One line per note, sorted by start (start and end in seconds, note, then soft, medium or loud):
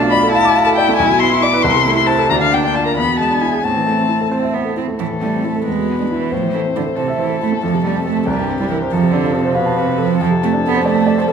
0.00 0.95 B1 medium
0.00 1.01 B2 soft
0.00 0.89 A3 medium
0.00 0.33 D4 medium
0.00 0.19 F4 medium
0.10 0.30 D5 medium
0.10 0.31 B5 medium
0.23 0.40 A4 medium
0.32 2.27 E4 medium
0.32 0.52 F5 medium
0.32 0.64 A5 medium
0.45 0.62 D6 soft
0.56 0.73 F5 medium
0.64 0.84 A4 soft
0.64 0.69 A5 medium
0.76 0.95 D5 medium
0.76 0.96 G5 medium
0.89 0.99 A3 soft
0.97 1.63 B1 medium
0.97 1.21 G#5 medium
1.10 1.28 B2 medium
1.19 1.38 B3 soft
1.19 1.44 C6 medium
1.31 1.49 E4 medium
1.42 1.61 D5 soft
1.42 1.64 D6 medium
1.53 1.65 B4 soft
1.63 2.29 C2 medium
1.63 1.95 C6 medium
1.75 1.93 C3 soft
1.85 2.04 A3 soft
1.96 2.14 E4 soft
1.96 2.08 C6 medium
2.07 2.26 C5 soft
2.07 2.30 A5 medium
2.18 2.30 A4 medium
2.29 2.95 D2 medium
2.29 2.97 D4 medium
2.29 2.35 A#5 medium
2.40 2.59 D3 soft
2.40 2.55 F5 medium
2.52 2.70 A#3 soft
2.52 2.64 G5 medium
2.64 2.82 D4 soft
2.64 2.77 G5 medium
2.74 2.93 F4 soft
2.74 2.85 A5 medium
2.86 2.97 A#4 soft
2.86 2.97 A#5 medium
2.97 3.63 E2 medium
2.97 3.65 B3 medium
2.97 3.19 B5 medium
3.08 3.26 B2 soft
3.19 3.38 G#3 soft
3.19 3.43 A5 medium
3.30 3.49 D4 soft
3.41 3.60 E4 soft
3.41 3.65 G#5 medium
3.53 3.65 G#4 soft
3.64 4.96 A2 soft
3.64 4.28 C4 soft
3.64 4.32 A5 medium
3.76 3.94 E3 soft
3.87 4.05 A3 soft
3.98 4.17 C4 soft
4.09 4.28 E4 soft
4.21 4.39 A4 soft
4.31 4.56 C4 medium
4.31 4.50 C5 soft
4.43 4.62 E5 soft
4.54 4.77 B3 medium
4.54 4.73 C5 soft
4.65 4.84 A4 soft
4.76 4.86 C4 soft
4.76 4.95 E4 soft
4.88 5.00 A3 soft
4.99 5.64 A2 soft
4.99 5.08 E3 medium
4.99 5.62 A4 soft
5.11 5.29 E3 soft
5.22 5.46 G3 soft
5.22 5.40 A3 soft
5.34 5.51 C4 soft
5.44 5.66 A3 soft
5.44 5.62 E4 soft
5.56 5.66 A4 soft
5.65 6.30 E2 soft
5.65 5.99 G#3 medium
5.65 6.32 B4 soft
5.79 5.95 B2 soft
5.89 6.06 B3 soft
5.99 6.11 G#3 soft
5.99 6.16 D4 soft
6.11 6.33 E3 medium
6.11 6.28 E4 soft
6.21 6.32 B4 soft
6.30 7.59 A2 soft
6.30 6.52 F3 medium
6.30 6.97 C5 soft
6.43 6.60 E3 soft
6.53 6.61 E3 medium
6.53 6.71 A3 soft
6.65 6.82 C4 soft
6.75 6.85 D3 medium
6.75 6.93 E4 soft
6.86 7.04 A4 soft
6.96 7.18 C3 medium
6.96 8.27 A4 medium
6.96 7.14 C5 soft
7.08 7.25 E5 soft
7.19 7.40 E3 medium
7.19 7.36 C5 soft
7.30 7.47 A4 soft
7.40 7.51 A3 medium
7.40 7.58 E4 soft
7.52 7.63 A3 soft
7.63 8.25 F2 soft
7.63 7.84 F3 medium
7.74 7.91 C3 soft
7.84 8.06 G3 medium
7.84 8.01 A3 soft
7.96 8.12 C4 soft
8.06 8.27 A3 medium
8.06 8.23 A4 soft
8.16 8.27 C4 soft
8.26 8.90 C2 soft
8.26 8.59 G3 medium
8.26 8.93 G4 medium
8.39 8.56 G2 soft
8.49 8.66 C4 soft
8.60 8.69 G3 medium
8.60 8.77 E4 soft
8.70 8.78 E3 medium
8.70 8.88 A#4 soft
8.82 8.92 C5 soft
8.92 10.18 F2 medium
8.92 9.13 F3 medium
8.92 9.55 A4 medium
9.02 9.20 C3 soft
9.12 9.36 D3 medium
9.12 9.30 C4 soft
9.24 9.41 F4 soft
9.34 9.56 C3 medium
9.34 9.52 A4 soft
9.45 9.63 C5 soft
9.55 9.79 B2 medium
9.55 10.19 B4 medium
9.55 9.73 F5 medium
9.66 9.84 A5 soft
9.77 10.00 C3 medium
9.77 9.95 F5 soft
9.88 10.05 C5 soft
9.98 10.21 F3 medium
9.98 10.16 A4 soft
10.10 10.21 C4 soft
10.20 11.33 F2 medium
10.20 10.30 F3 medium
10.20 11.33 A4 medium
10.31 10.48 C3 soft
10.42 10.52 A3 medium
10.42 10.59 C4 soft
10.53 10.70 D4 soft
10.64 10.87 B3 medium
10.64 10.81 A4 soft
10.74 10.92 C5 soft
10.85 11.18 A3 medium
10.85 11.03 D5 medium
10.95 11.13 A5 soft
11.07 11.24 D5 soft
11.18 11.25 A3 medium
11.18 11.33 C5 soft
11.28 11.33 A4 medium